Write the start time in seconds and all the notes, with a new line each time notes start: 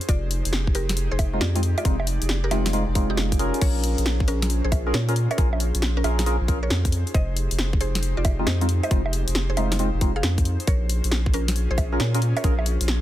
Already playing: D#4 G4 G#4 C5
0.01 closed hi-hat
0.09 F1 F4 D5, kick, closed hi-hat
0.31 open hi-hat
0.45 F1, closed hi-hat
0.53 snare
0.67 kick
0.75 F1 G4 A#4, open hi-hat
0.89 snare, closed hi-hat
0.97 closed hi-hat
1.11 F1 G#4 C5
1.19 kick, open hi-hat, high bongo
1.33 G#3 C4 D#4 F4
1.41 F2 F4 D5, snare
1.56 G#3 C4 D#4 F4, closed hi-hat
1.63 D5, open hi-hat
1.78 F4 D5, closed hi-hat, high bongo
1.85 F1 G#3 C4 D#4 F4, kick, closed hi-hat
2.00 high bongo
2.07 open hi-hat
2.22 F1, closed hi-hat
2.29 snare
2.44 G4 A#4
2.51 F1 G#3 C4 D#4 F4, snare, open hi-hat, high bongo
2.66 snare, closed hi-hat
2.73 G#3 C4 D#4 F4, closed hi-hat
2.88 F1
2.95 G#3 C4 D#4 F4, kick, open hi-hat
3.10 D#4 G4
3.17 F1, snare
3.32 kick, closed hi-hat
3.39 C#4 F4 G#4 A#4, open hi-hat
3.54 closed hi-hat
3.61 A#1 C#4 F4 A#4 C5 C#5, kick, closed hi-hat, crash
3.84 open hi-hat
3.98 A#1, closed hi-hat
4.06 snare
4.20 kick
4.28 A#1 C#4 A#4, open hi-hat
4.42 snare, closed hi-hat
4.50 closed hi-hat
4.64 A#1 G#4 C5
4.72 kick, open hi-hat, high bongo
4.87 C#4 F4 G#4 A#4
4.94 A#2 A#4 C#5, snare
5.09 C#4 F4 G#4 A#4, closed hi-hat
5.16 open hi-hat
5.31 A#4 C#5, closed hi-hat, high bongo
5.38 A#1 C#4 F4 G#4 A#4, kick, closed hi-hat
5.53 high bongo
5.60 open hi-hat
5.75 A#1, closed hi-hat
5.82 snare
5.97 C#4 A#4
6.04 A#1 C#4 F4 G#4 A#4, open hi-hat, high bongo
6.19 snare, closed hi-hat
6.26 C#4 F4 G#4 A#4, closed hi-hat
6.41 A#1
6.48 C#4 F4 G#4 A#4, kick, open hi-hat
6.63 A#4 C#5
6.70 F2, snare
6.85 kick, closed hi-hat
6.92 D#4 G4, open hi-hat
7.07 closed hi-hat
7.14 F1 C5 D#5, kick, closed hi-hat
7.37 open hi-hat
7.51 F1, closed hi-hat
7.59 snare
7.73 kick
7.81 F1 G#4 C5, open hi-hat
7.95 snare, closed hi-hat
8.03 closed hi-hat
8.17 F1 F4 D5
8.25 kick, open hi-hat, high bongo
8.39 G#3 C4 D#4 F4
8.47 F2 C5 D#5, snare
8.61 G#3 C4 D#4 F4, closed hi-hat
8.69 open hi-hat
8.83 C5 D#5, closed hi-hat, high bongo
8.91 F1 G#3 C4 D#4 F4, kick, closed hi-hat
9.06 high bongo
9.13 open hi-hat
9.28 F1, closed hi-hat
9.35 snare
9.50 G#4 C5
9.57 F1 G#3 C4 D#4 F4, open hi-hat, high bongo
9.72 snare, closed hi-hat
9.79 G#3 C4 D#4 F4, closed hi-hat
9.94 F1
10.01 G#3 C4 D#4 F4, kick, open hi-hat
10.16 G#4 F5
10.23 F2, snare
10.38 kick, closed hi-hat
10.45 open hi-hat
10.60 closed hi-hat
10.67 A#1 C#4 F4 G#4 A#4 C#5, kick, closed hi-hat
10.89 open hi-hat
11.04 A#1, closed hi-hat
11.12 snare
11.26 kick
11.34 A#1 C#4 A#4, open hi-hat
11.48 snare, closed hi-hat
11.56 closed hi-hat
11.71 A#1 G#4 C5
11.78 kick, open hi-hat, high bongo
11.92 C#4 F4 G#4 A#4
12.00 A#2 A#4 C#5, snare
12.14 C#4 F4 G#4 A#4, closed hi-hat
12.22 open hi-hat
12.37 A#4 C#5, closed hi-hat, high bongo
12.44 A#1 C#4 F4 G#4 A#4, kick, closed hi-hat
12.59 high bongo
12.66 open hi-hat
12.81 A#1, closed hi-hat
12.88 snare